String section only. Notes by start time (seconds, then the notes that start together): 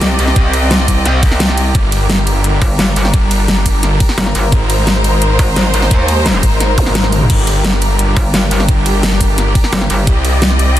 Already playing: C4 G4 D5 D#5
1.75 G3 D4 A#4
4.52 G#3 D#4 C5
7.30 G3 D4 G4
10.07 C4 D5 D#5